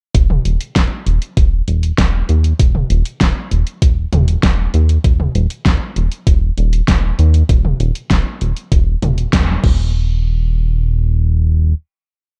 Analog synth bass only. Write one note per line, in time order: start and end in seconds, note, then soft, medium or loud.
0.15 0.39 D#1 medium
0.45 0.57 D#1 loud
0.76 0.88 D#1 medium
1.06 1.19 D#1 medium
1.37 1.61 D#1 medium
1.68 1.92 D#1 loud
1.98 2.23 D#1 medium
2.29 2.53 D#2 medium
2.60 2.84 D#1 loud
2.90 3.02 D#1 medium
3.21 3.33 D#1 medium
3.51 3.64 D#1 medium
3.82 4.06 D#1 medium
4.13 4.37 D#1 loud
4.43 4.68 D#1 medium
4.74 4.98 D#2 medium
5.04 5.29 D#1 loud
5.35 5.47 D#1 medium
5.66 5.78 D#1 medium
5.96 6.08 D#1 medium
6.27 6.51 D#1 medium
6.58 6.82 D#1 loud
6.88 7.12 D#1 medium
7.19 7.43 D#2 loud
7.49 7.74 D#1 loud
7.80 7.92 D#1 medium
8.11 8.23 D#1 medium
8.41 8.53 D#1 medium
8.72 8.96 D#1 medium
9.02 9.27 D#1 loud
9.33 9.57 D#1 medium
9.64 11.74 D#1 loud